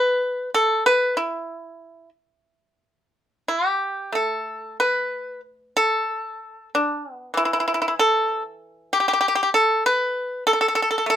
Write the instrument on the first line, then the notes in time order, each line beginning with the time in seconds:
pipa
Already playing: E3 B4
0.54 A4
0.86 B4
1.17 E4
3.48 G4
4.12 A3 A4
4.80 B4
5.77 A4
6.75 D4
7.14 B3
7.34 E3 E4
7.45 E4
7.53 E4
7.60 E4
7.68 E4
7.74 E4
7.82 E4
7.88 E4
7.99 A4
8.93 G4
9.00 G4
9.08 G4
9.13 G4
9.21 G4
9.28 G4
9.35 G4
9.43 G4
9.54 A4
9.86 B4
10.47 A4
10.61 A4
10.75 A4
10.82 A4
10.91 A4
10.98 A4
11.06 A3 A4